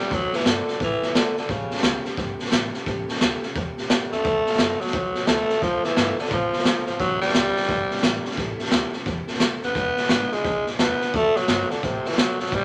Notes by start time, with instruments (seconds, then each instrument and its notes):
Already playing: tenor saxophone G3
0.00 steel-string acoustic guitar G3 C#4 G4 A4
0.11 upright bass D2, steel-string acoustic guitar D3 A3 C4 F#4 A4, tenor saxophone F#3, kick, snare
0.32 tenor saxophone E3, steel-string acoustic guitar C4 F#4 A4, muted upright bass stroke, snare
0.39 snare
0.45 upright bass G2, steel-string acoustic guitar D3 A3 C4 F#4 A4, tenor saxophone D3, snare, hi-hat pedal
0.68 steel-string acoustic guitar C4 F#4 A4, muted upright bass stroke, snare
0.80 upright bass A2, tenor saxophone E3, steel-string acoustic guitar A3 C4 F#4 A4, kick, snare
1.02 steel-string acoustic guitar C4 F#4 A4, muted upright bass stroke, snare
1.14 upright bass B2, steel-string acoustic guitar D3 A3 C4 F#4 A4, tenor saxophone D3, snare, hi-hat pedal
1.37 upright bass A2, tenor saxophone D3, steel-string acoustic guitar C4 F#4 A4, snare
1.49 upright bass A1, steel-string acoustic guitar A2 E3 G3 C#4 G4 A4, tenor saxophone C#3, kick, snare
1.71 steel-string acoustic guitar G3 C#4 G4 A4, muted upright bass stroke, snare
1.77 snare
1.83 upright bass C#2, steel-string acoustic guitar A2 E3 G3 C#4 G4 A4, snare, hi-hat pedal
2.05 steel-string acoustic guitar G3 C#4 G4 A4, muted upright bass stroke, snare
2.17 upright bass G1, steel-string acoustic guitar G3 C#4 G4 A4, kick, snare
2.39 steel-string acoustic guitar G3 C#4 G4 A4, muted upright bass stroke, snare
2.45 snare
2.52 upright bass A1, steel-string acoustic guitar A2 E3 G3 C#4 G4 A4, snare, hi-hat pedal
2.74 steel-string acoustic guitar G3 C#4 G4 A4, muted upright bass stroke, snare
2.86 upright bass A1, steel-string acoustic guitar A2 E3 G3 C#4 G4 A4, kick, snare
3.07 steel-string acoustic guitar G3 C#4 G4 A4, muted upright bass stroke, snare
3.15 snare
3.21 upright bass D2, steel-string acoustic guitar A2 E3 G3 C#4 G4 A4, snare, hi-hat pedal
3.43 steel-string acoustic guitar G3 C#4 G4 A4, muted upright bass stroke, snare
3.55 upright bass E2, steel-string acoustic guitar G3 C#4 G4 A4, kick, snare
3.77 steel-string acoustic guitar G3 C#4 G4 A4, muted upright bass stroke, snare
3.89 upright bass F#2, steel-string acoustic guitar A2 E3 G3 C#4 G4 A4, snare, hi-hat pedal
4.11 upright bass E2, steel-string acoustic guitar G3 C#4 G4 A4, tenor saxophone A3, snare
4.25 upright bass D2, steel-string acoustic guitar C4 F#4 A4, kick, snare
4.46 steel-string acoustic guitar C4 F#4 A4, muted upright bass stroke, snare
4.53 snare
4.58 upright bass F#2, steel-string acoustic guitar D3 A3 C4 F#4 A4, snare, hi-hat pedal
4.80 tenor saxophone F#3, steel-string acoustic guitar C4 F#4 A4, muted upright bass stroke, snare
4.87 snare
4.93 upright bass C2, steel-string acoustic guitar A3 C4 F#4 A4, kick, snare
5.15 steel-string acoustic guitar F#4 A4, muted upright bass stroke, snare
5.19 steel-string acoustic guitar C4
5.27 upright bass D2, steel-string acoustic guitar D3 A3 C4 F#4 A4, tenor saxophone A3, snare, hi-hat pedal
5.49 steel-string acoustic guitar C4 F#4 A4, muted upright bass stroke, snare
5.62 upright bass D2, steel-string acoustic guitar D3 A3 C4 F4 A4, tenor saxophone F3, kick, snare
5.84 tenor saxophone E3, steel-string acoustic guitar C4 F4 A4, muted upright bass stroke, snare
5.96 upright bass G2, steel-string acoustic guitar D3 A3 C4 F4 A4, snare, hi-hat pedal
6.18 tenor saxophone D3, steel-string acoustic guitar C4 F4 A4, muted upright bass stroke, snare
6.25 snare
6.30 upright bass A2, tenor saxophone F3, steel-string acoustic guitar A3 C4 F4 A4, kick, snare
6.53 steel-string acoustic guitar C4 F4 A4, muted upright bass stroke, snare
6.59 snare
6.65 upright bass B2, steel-string acoustic guitar D3 A3 C4 F4 A4, snare, hi-hat pedal
6.86 upright bass A2, tenor saxophone F3, steel-string acoustic guitar F4 A4, snare
6.91 steel-string acoustic guitar C4
6.99 upright bass A1, steel-string acoustic guitar A2 E3 G3 C#4 E4 A4, tenor saxophone F#3, kick, snare
7.21 tenor saxophone G3, steel-string acoustic guitar G3 C#4 E4 A4, muted upright bass stroke, snare
7.28 snare
7.34 upright bass C#2, steel-string acoustic guitar A2 E3 G3 C#4 E4 A4, snare, hi-hat pedal
7.56 steel-string acoustic guitar G3 C#4 E4 A4, muted upright bass stroke, snare
7.62 snare
7.69 upright bass G1, steel-string acoustic guitar C#4 E4 A4, kick, snare
7.90 steel-string acoustic guitar G3 C#4 E4 A4, muted upright bass stroke, snare
7.97 snare
8.03 upright bass A1, steel-string acoustic guitar A2 E3 G3 C#4 E4 A4, snare, hi-hat pedal
8.25 steel-string acoustic guitar G3 C#4 E4 A4, muted upright bass stroke, snare
8.31 snare
8.37 upright bass A1, steel-string acoustic guitar A2 E3 G3 C#4 E4 A4, kick, snare
8.58 steel-string acoustic guitar G3 C#4 E4 A4, muted upright bass stroke, snare
8.65 snare
8.71 upright bass D2, steel-string acoustic guitar A2 E3 G3 C#4 E4 A4, snare, hi-hat pedal
8.93 steel-string acoustic guitar G3 C#4 E4 A4, muted upright bass stroke, snare
9.06 upright bass E2, steel-string acoustic guitar G3 C#4 E4 A4, kick, snare
9.27 steel-string acoustic guitar G3 C#4 E4 A4, muted upright bass stroke, snare
9.34 snare
9.40 upright bass F#2, steel-string acoustic guitar A2 E3 G3 C#4 E4 A4, snare, hi-hat pedal
9.62 upright bass D#2, steel-string acoustic guitar G3 C#4 E4 A4, tenor saxophone B3, snare
9.74 upright bass E1, steel-string acoustic guitar E3 G#3 D4 E4 B4, kick, snare
9.96 steel-string acoustic guitar D4 E4 B4, muted upright bass stroke, snare
10.03 snare
10.09 upright bass G#1, steel-string acoustic guitar E3 G#3 D4 E4 B4, snare, hi-hat pedal
10.31 tenor saxophone G#3, steel-string acoustic guitar D4 E4 B4, muted upright bass stroke, snare
10.44 upright bass D2, steel-string acoustic guitar G#3 D4 E4 B4, kick, snare
10.66 steel-string acoustic guitar D4 E4 B4, muted upright bass stroke, snare
10.79 upright bass E1, steel-string acoustic guitar E3 G#3 D4 E4 B4, tenor saxophone B3, snare, hi-hat pedal
11.00 steel-string acoustic guitar D4 E4 B4, muted upright bass stroke, snare
11.13 upright bass D2, steel-string acoustic guitar D3 A3 C4 F#4 A4, tenor saxophone A3, kick, snare
11.35 tenor saxophone F#3, steel-string acoustic guitar C4 F#4 A4, muted upright bass stroke, snare
11.48 upright bass G2, steel-string acoustic guitar D3 A3 C4 F#4 A4, snare, hi-hat pedal
11.70 tenor saxophone D3, steel-string acoustic guitar C4 F#4 A4, muted upright bass stroke, snare
11.83 upright bass A2, tenor saxophone C3, steel-string acoustic guitar A3 C4 F#4 A4, kick, snare
12.04 tenor saxophone E3, steel-string acoustic guitar C4 F#4 A4, muted upright bass stroke, snare
12.11 snare
12.17 upright bass B2, steel-string acoustic guitar D3 A3 C4 F#4 A4, tenor saxophone F#3, snare, hi-hat pedal
12.39 upright bass G1, tenor saxophone F#3, steel-string acoustic guitar C4 F#4 A4, snare
12.46 snare
12.51 upright bass A1, steel-string acoustic guitar A2 E3 G3 C#4 E4 A4, tenor saxophone G3, kick, snare